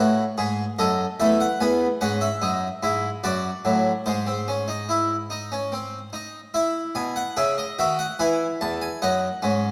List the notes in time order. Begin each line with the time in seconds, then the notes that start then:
Already playing: A2 F#4 C#5
0.38 G#2 G#4
0.79 F#2 A4 D#5
1.20 E2 A3 E5
1.40 F#5
1.61 E2 B3 G#5
2.01 G#2 C#4 F#5
2.21 E5
2.42 F#2 D#4
2.83 G#2 E4
3.24 F#2 F#4 D5
3.65 A2 F#3
4.06 G#2 G#3 C5
4.27 C4
4.48 C#4
4.68 D#4
4.89 E4
5.30 D#4
5.52 C#4
5.72 C4
6.13 D#4
6.54 E4 E5
6.95 B2 G#5
7.16 F#5
7.37 C#3 G#4 E5
7.58 D#5
7.79 D#3 F#4 E5
7.99 F#5
8.19 E3 E4 G#5
8.61 E2 A5
8.82 G#5
9.02 F#2 D#4 F#5
9.42 G#2 C#4